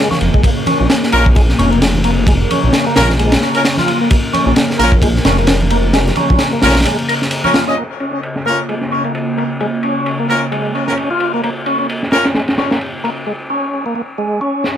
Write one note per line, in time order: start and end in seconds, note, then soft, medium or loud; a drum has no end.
0.00 7.73 C#3 medium
0.00 7.73 A#3 medium
0.00 0.43 F4 medium
0.11 0.19 C#4 medium
0.11 snare soft
0.11 high conga medium
0.21 0.29 F1 medium
0.21 ride medium
0.34 0.42 G#3 medium
0.34 kick medium
0.43 0.50 A#3 medium
0.43 7.76 A#4 medium
0.43 kick loud
0.43 ride medium
0.43 high bongo medium
0.66 0.78 C#4 medium
0.66 ride medium
0.66 high conga medium
0.80 0.86 A#1 loud
0.80 0.88 C#4 medium
0.90 snare loud
0.90 ride medium
1.03 snare soft
1.12 1.53 A#1 medium
1.12 1.19 A#3 medium
1.12 1.26 C#4 medium
1.12 1.25 F4 medium
1.12 1.26 A#4 loud
1.12 ride medium
1.26 kick medium
1.26 high conga medium
1.35 1.42 G#3 medium
1.35 kick loud
1.35 ride medium
1.35 high bongo medium
1.49 snare soft
1.59 2.45 F1 medium
1.59 1.71 C#4 medium
1.59 ride medium
1.59 low conga medium
1.72 1.80 A#3 medium
1.72 ride soft
1.82 snare loud
1.82 ride loud
1.95 high conga medium
2.04 2.11 A#3 loud
2.04 ride medium
2.27 2.34 G#3 medium
2.27 kick loud
2.27 ride medium
2.27 high bongo medium
2.51 2.85 C#4 medium
2.51 ride medium
2.51 high bongo soft
2.51 high conga medium
2.63 2.70 A#1 loud
2.73 snare loud
2.73 ride medium
2.87 2.95 A#3 medium
2.96 3.36 A#1 medium
2.96 3.03 A#3 loud
2.96 3.09 C#4 medium
2.96 3.09 F4 medium
2.96 3.09 A#4 loud
2.96 snare loud
2.96 ride medium
2.96 low conga medium
3.09 snare soft
3.09 high conga medium
3.19 3.41 G#3 medium
3.19 ride medium
3.32 snare loud
3.32 ride medium
3.42 3.77 C#4 medium
3.42 snare soft
3.55 3.61 C#4 medium
3.55 3.61 F4 medium
3.55 3.61 A#4 medium
3.55 ride medium
3.65 snare medium
3.65 ride medium
3.77 4.00 F4 loud
3.77 snare soft
3.77 high conga medium
3.88 ride medium
4.01 4.09 A#3 medium
4.11 4.17 A#3 medium
4.11 kick loud
4.11 ride medium
4.11 high bongo medium
4.33 4.45 C#4 medium
4.33 ride medium
4.33 high conga medium
4.46 4.53 A#1 loud
4.46 4.54 C#4 medium
4.56 snare loud
4.56 ride medium
4.70 snare soft
4.79 5.19 A#1 medium
4.79 4.86 A#3 loud
4.79 4.92 C#4 medium
4.79 4.92 F4 medium
4.79 4.92 A#4 loud
4.79 ride medium
4.92 kick medium
4.92 high conga medium
5.02 5.08 G#3 medium
5.02 kick loud
5.02 ride medium
5.02 high bongo medium
5.16 snare soft
5.25 6.11 F1 medium
5.25 5.37 C#4 medium
5.25 snare loud
5.25 ride medium
5.25 low conga medium
5.38 5.46 A#3 medium
5.38 ride soft
5.47 snare loud
5.47 ride medium
5.61 high conga medium
5.70 5.77 A#3 loud
5.70 ride medium
5.93 6.00 G#3 medium
5.93 snare loud
5.93 ride medium
5.93 high bongo medium
6.07 snare soft
6.07 high bongo medium
6.16 6.52 C#4 medium
6.16 ride medium
6.16 high bongo soft
6.16 high conga medium
6.30 6.36 A#1 loud
6.30 kick medium
6.39 snare loud
6.39 ride medium
6.53 6.61 A#3 medium
6.62 6.85 A#1 medium
6.62 6.69 A#3 loud
6.62 6.75 C#4 loud
6.62 6.75 F4 medium
6.62 6.75 A#4 loud
6.62 snare medium
6.62 ride medium
6.62 low conga medium
6.69 snare medium
6.69 ride medium
6.75 snare medium
6.75 ride medium
6.75 high conga medium
6.80 snare medium
6.80 ride medium
6.85 6.97 G#3 medium
6.85 ride medium
6.99 ride soft
7.09 7.15 A#4 medium
7.09 ride medium
7.22 snare soft
7.31 ride medium
7.44 7.54 C#4 medium
7.44 7.53 C#4 medium
7.44 7.54 F4 medium
7.44 7.54 A#4 medium
7.44 high conga medium
7.54 7.65 F4 medium
7.54 snare loud
7.54 ride medium
7.67 7.76 C#4 medium
7.67 7.75 C#4 medium
7.67 7.76 F4 medium
7.67 7.76 D#5 medium
7.77 13.23 C#3 medium
7.77 13.23 A#3 medium
7.77 7.84 A#3 medium
7.77 13.23 F4 medium
7.77 ride medium
8.00 8.12 C#4 medium
8.00 ride medium
8.13 8.21 C#4 medium
8.23 ride medium
8.36 snare soft
8.46 8.52 A#3 medium
8.46 8.58 C#4 medium
8.46 8.58 F4 medium
8.46 8.58 A#4 medium
8.46 ride medium
8.69 8.75 G#3 medium
8.69 ride medium
8.81 snare soft
8.92 9.04 C#4 medium
8.92 ride medium
9.04 9.13 A#3 medium
9.04 ride soft
9.15 ride medium
9.38 9.44 A#3 medium
9.38 ride medium
9.60 9.67 G#3 medium
9.60 ride medium
9.83 10.18 C#4 medium
9.83 ride medium
10.06 ride medium
10.19 10.28 A#3 medium
10.29 10.35 A#3 medium
10.29 10.42 C#4 medium
10.29 10.42 F4 medium
10.29 10.42 A#4 medium
10.29 ride medium
10.52 10.74 G#3 medium
10.52 ride medium
10.65 ride soft
10.75 11.09 C#4 medium
10.75 ride medium
10.88 10.94 C#4 medium
10.88 10.94 F4 medium
10.88 10.94 A#4 medium
10.88 snare soft
10.97 ride medium
11.11 11.32 F4 medium
11.20 ride medium
11.34 11.42 A#3 medium
11.44 11.50 A#3 medium
11.44 ride medium
11.66 11.78 C#4 medium
11.66 ride medium
11.79 11.87 C#4 medium
11.89 ride medium
12.03 snare soft
12.12 12.19 A#3 medium
12.12 12.25 C#4 medium
12.12 12.25 F4 medium
12.12 12.25 A#4 loud
12.12 snare medium
12.12 ride medium
12.24 snare medium
12.24 ride medium
12.35 12.42 G#3 medium
12.35 snare medium
12.35 ride medium
12.48 snare medium
12.48 ride medium
12.58 12.70 C#4 medium
12.58 snare loud
12.58 ride medium
12.71 12.79 A#3 medium
12.71 snare medium
12.71 ride medium
12.81 ride medium
13.04 13.10 A#3 medium
13.04 ride medium
13.27 13.33 G#3 medium
13.50 13.85 C#4 medium
13.86 13.94 A#3 medium
13.96 14.02 A#3 medium
14.18 14.40 G#3 medium
14.41 14.76 C#4 medium
14.64 snare medium